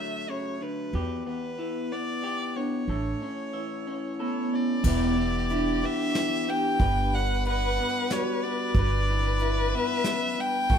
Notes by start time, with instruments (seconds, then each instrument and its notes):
Already playing: clean electric guitar D3 F#3 A3 F#4, vibraphone F#4, violin E5
0.29 clean electric guitar C#3, violin C#5
0.61 clean electric guitar D3, violin B4
0.93 upright bass E2, clean electric guitar E2 G4
1.27 clean electric guitar B3, violin B4
1.59 clean electric guitar E3
1.92 clean electric guitar B3, violin D5
2.24 clean electric guitar G4
2.56 clean electric guitar B3, vibraphone D4, violin C#5
2.88 upright bass A1, clean electric guitar A2 A4
3.22 clean electric guitar C#4
3.53 clean electric guitar E3, vibraphone E4
3.87 clean electric guitar C#4
4.19 vibraphone B3, clean electric guitar A4, violin C#5
4.54 clean electric guitar C#4, violin D5
4.84 upright bass E1, clean electric guitar E2 E3 B3 E4, violin G4, kick, crash
4.88 clean electric guitar G4
5.17 clean electric guitar E3
5.50 vibraphone D4, clean electric guitar E4, closed hi-hat
5.84 clean electric guitar B3, violin E5
6.15 clean electric guitar E3, snare, closed hi-hat
6.49 clean electric guitar B3, vibraphone G4, violin G5
6.79 upright bass G1, clean electric guitar G2 B4, violin B4, kick, closed hi-hat
7.13 clean electric guitar G3, vibraphone B4, violin F#5
7.45 clean electric guitar B4, violin F#5, closed hi-hat
7.79 clean electric guitar B3
8.10 clean electric guitar G3, vibraphone F#4, violin C#5, snare, closed hi-hat
8.43 clean electric guitar B3, violin D5
8.74 upright bass G1, clean electric guitar G2, violin B4, kick, closed hi-hat
8.79 clean electric guitar B4
9.10 clean electric guitar E3
9.39 clean electric guitar E4, closed hi-hat
9.75 clean electric guitar B3, violin E5
10.04 clean electric guitar F#2, snare, closed hi-hat
10.38 clean electric guitar G2, violin G5
10.69 upright bass A1, clean electric guitar A2 F#4, vibraphone A4, violin A4, kick, closed hi-hat